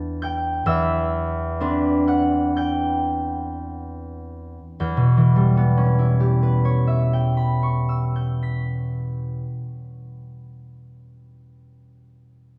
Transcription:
0.00 0.65 E2 medium
0.00 1.96 B3 soft
0.00 1.60 D4 soft
0.00 1.60 B4 soft
0.00 0.67 E5 soft
0.00 0.23 G5 medium
0.00 0.71 A5 medium
0.00 0.65 E6 medium
0.00 0.21 G6 medium
0.00 1.17 A6 medium
0.22 2.56 G5 soft
0.22 2.55 G6 medium
0.66 4.56 E2 medium
0.66 4.58 E5 soft
0.66 4.57 E6 medium
1.60 4.86 C4 soft
1.60 4.86 D4 soft
1.60 5.51 B4 soft
2.08 4.86 F#5 soft
2.08 2.94 F#6 soft
2.57 6.48 G5 soft
2.57 4.79 G6 medium
4.80 9.42 E2 soft
4.80 8.15 G6 soft
4.97 9.59 B2 soft
5.17 9.79 E3 soft
5.36 9.98 G3 soft
5.57 10.19 B3 soft
5.77 10.40 C#4 soft
5.99 10.44 E4 soft
6.20 10.44 G4 soft
6.43 10.44 B4 soft
6.65 10.43 C#5 soft
6.87 10.43 E5 soft
7.13 10.44 G5 soft
7.37 10.43 B5 soft
7.63 10.43 C#6 soft
7.89 10.43 E6 soft
8.16 10.43 G6 soft
8.43 10.43 B6 soft

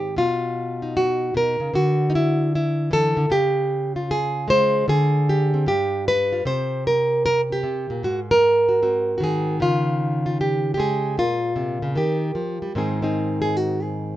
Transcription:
0.00 0.15 G#2 medium
0.00 0.17 D#3 soft
0.00 0.15 C4 soft
0.00 0.15 D#4 soft
0.00 0.17 G4 medium
0.16 1.33 B2 medium
0.16 0.96 F4 medium
0.82 1.72 D#4 soft
0.97 1.35 F#4 medium
1.34 1.59 B2 medium
1.34 1.75 A#4 medium
1.60 1.73 C#3 medium
1.74 3.16 D3 medium
1.74 2.48 F#4 medium
2.10 2.14 D#4 medium
2.15 2.53 E4 medium
2.55 3.31 E4 medium
2.91 3.17 E3 medium
2.91 3.31 A4 loud
3.17 3.29 D3 medium
3.30 4.85 C#3 medium
3.30 3.96 G4 medium
3.96 4.86 F4 soft
4.11 4.49 G#4 medium
4.48 4.86 G#3 medium
4.48 4.88 C5 loud
4.88 5.65 D3 medium
4.88 5.67 G#4 loud
5.29 5.67 G4 medium
5.54 5.65 C4 soft
5.66 6.43 G2 medium
5.66 6.06 G4 medium
6.08 6.46 B4 loud
6.32 6.43 F4 soft
6.45 7.62 C3 medium
6.45 6.85 C5 loud
6.87 7.24 A#4 medium
7.26 7.41 A#4 medium
7.52 8.03 G4 medium
7.63 7.89 C3 medium
7.90 8.02 A#2 medium
8.03 9.58 G#2 medium
8.03 8.19 F#4 medium
8.31 9.21 A#4 medium
8.69 8.81 F#4 soft
8.82 9.63 C4 soft
8.82 9.16 F#4 soft
9.18 10.77 D#3 medium
9.18 9.61 F#4 medium
9.24 9.61 G#4 medium
9.60 11.16 C#3 medium
9.60 10.25 F4 medium
10.26 10.38 F4 soft
10.41 10.73 G4 medium
10.74 11.15 G#3 medium
10.74 11.18 G4 medium
10.80 11.18 G#4 medium
11.17 11.95 A#2 medium
11.17 11.97 F4 medium
11.56 11.82 C3 medium
11.82 11.96 C#3 medium
11.96 12.35 D#3 medium
11.96 12.76 G4 medium
12.35 12.62 F3 medium
12.62 12.75 G3 medium
12.75 14.16 G#2 medium
12.75 14.16 D#3 soft
12.75 13.01 C4 soft
12.75 13.02 D#4 soft
12.75 13.04 G#4 soft
13.02 14.16 C4 soft
13.02 14.16 D#4 soft
13.02 13.41 G#4 soft
13.42 13.57 G#4 medium
13.57 13.83 F#4 medium
13.83 14.16 G#4 loud

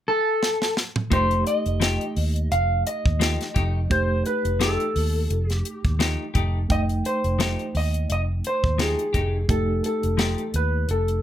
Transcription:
0.08 0.73 A4 loud
0.43 snare medium
0.62 snare medium
0.77 snare medium
0.96 mid tom medium
1.10 1.42 F1 medium
1.10 1.33 F3 medium
1.10 3.86 A3 medium
1.10 1.34 A3 medium
1.10 3.86 D#4 medium
1.10 1.34 D#4 medium
1.10 3.87 G4 medium
1.10 1.34 G4 medium
1.10 1.47 C5 loud
1.10 kick loud
1.10 closed hi-hat medium
1.31 closed hi-hat soft
1.47 2.51 D#5 medium
1.47 closed hi-hat medium
1.66 1.96 F1 medium
1.66 closed hi-hat soft
1.80 2.03 F3 medium
1.80 2.03 A3 medium
1.80 2.04 D#4 medium
1.80 2.04 G4 loud
1.80 snare loud
1.80 closed hi-hat medium
2.01 closed hi-hat soft
2.16 2.47 D#2 medium
2.16 open hi-hat medium
2.36 closed hi-hat soft
2.52 2.82 F1 medium
2.52 2.87 F5 loud
2.52 closed hi-hat medium
2.87 3.94 D#5 medium
2.87 closed hi-hat medium
3.06 3.36 D#2 medium
3.06 kick medium
3.20 3.43 F3 medium
3.20 3.43 A3 medium
3.20 3.43 D#4 medium
3.20 3.44 G4 medium
3.20 snare loud
3.20 closed hi-hat medium
3.41 snare soft
3.41 closed hi-hat soft
3.54 3.87 F1 loud
3.54 3.79 A3 soft
3.54 3.78 D#4 soft
3.54 3.77 G4 medium
3.54 kick medium
3.54 closed hi-hat medium
3.90 4.22 F1 loud
3.90 6.65 A3 medium
3.90 6.65 D#4 medium
3.90 6.66 G4 medium
3.90 4.23 C5 loud
3.90 kick loud
3.90 closed hi-hat medium
4.26 4.62 B4 medium
4.26 closed hi-hat medium
4.45 4.75 F1 medium
4.45 closed hi-hat soft
4.60 4.82 F3 medium
4.60 4.83 A3 medium
4.60 4.83 D#4 medium
4.60 4.83 G4 medium
4.60 5.52 A4 medium
4.60 snare loud
4.60 closed hi-hat medium
4.80 closed hi-hat soft
4.96 5.26 D#2 medium
4.96 open hi-hat medium
5.30 5.61 F1 loud
5.30 closed hi-hat medium
5.50 5.96 G4 medium
5.50 snare soft
5.50 closed hi-hat soft
5.65 closed hi-hat medium
5.84 6.15 D#2 medium
5.84 kick medium
5.84 closed hi-hat soft
5.99 6.22 F3 medium
5.99 6.22 A3 loud
5.99 6.23 D#4 loud
5.99 6.23 G4 medium
5.99 snare loud
5.99 closed hi-hat medium
6.34 6.66 F1 loud
6.34 6.58 A3 medium
6.34 6.58 D#4 medium
6.34 6.57 G4 medium
6.34 kick medium
6.34 closed hi-hat medium
6.69 7.01 F1 medium
6.69 9.44 A3 medium
6.69 9.45 D#4 medium
6.69 6.81 D#5 loud
6.69 9.45 G5 medium
6.69 kick loud
6.69 closed hi-hat medium
6.89 closed hi-hat soft
7.05 7.77 C5 medium
7.05 closed hi-hat medium
7.24 7.55 F1 medium
7.24 closed hi-hat soft
7.39 7.61 F3 medium
7.39 7.62 A3 medium
7.39 7.62 D#4 medium
7.39 7.63 G4 medium
7.39 snare loud
7.39 closed hi-hat medium
7.59 closed hi-hat soft
7.75 8.05 D#2 medium
7.75 8.11 D#5 loud
7.75 open hi-hat medium
7.94 closed hi-hat soft
8.10 8.40 F1 medium
8.10 8.21 D#5 loud
8.10 closed hi-hat medium
8.44 8.81 C5 medium
8.44 closed hi-hat medium
8.64 8.94 D#2 medium
8.64 kick medium
8.78 9.01 F3 medium
8.78 9.01 A3 medium
8.78 9.02 D#4 medium
8.78 9.02 G4 medium
8.78 9.50 G#4 medium
8.78 snare loud
8.78 closed hi-hat medium
8.99 closed hi-hat soft
9.13 9.45 F1 medium
9.13 9.37 A3 soft
9.13 9.37 D#4 soft
9.13 9.36 G4 medium
9.13 kick medium
9.13 closed hi-hat medium
9.48 9.80 F1 loud
9.48 11.22 A3 medium
9.48 11.22 D#4 medium
9.48 11.22 G4 medium
9.48 9.85 A4 medium
9.48 kick loud
9.48 closed hi-hat medium
9.84 10.55 A4 medium
9.84 closed hi-hat medium
10.03 10.34 F1 medium
10.03 closed hi-hat soft
10.17 10.40 F3 medium
10.17 10.41 A3 medium
10.17 10.41 D#4 medium
10.17 10.41 G4 medium
10.17 snare loud
10.17 closed hi-hat medium
10.38 closed hi-hat soft
10.54 10.84 D#2 medium
10.54 10.90 B4 medium
10.54 closed hi-hat medium
10.89 11.19 F1 medium
10.89 11.22 A4 medium
10.89 closed hi-hat medium
11.08 closed hi-hat soft

